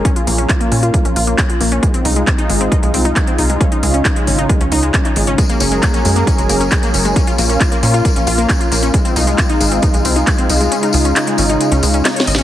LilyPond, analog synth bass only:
\new Staff \with { instrumentName = "Analog synth bass" } { \clef bass \time 4/4 \key bes \minor \tempo 4 = 135 r8 bes,,8 r8 bes,8 r16 bes,,16 bes,,8 r8 bes,,8 | r8 c,8 r8 aes,,8 r16 c,16 c,8 r8 c,8 | r8 des,8 r8 aes,,8 r16 des,16 des,8 r8 aes,,8 | r8 ges,,8 r8 ges,8 r16 ges,,16 ges,,8 r8 ges,,8 |
r8 bes,,8 r8 bes,8 r16 bes,,16 bes,,8 r8 bes,,8 | r8 c,8 r8 aes,,8 r16 c,16 c,8 r8 c,8 | r8 des,8 r8 aes,,8 r16 des,16 des,8 r8 aes,,8 | }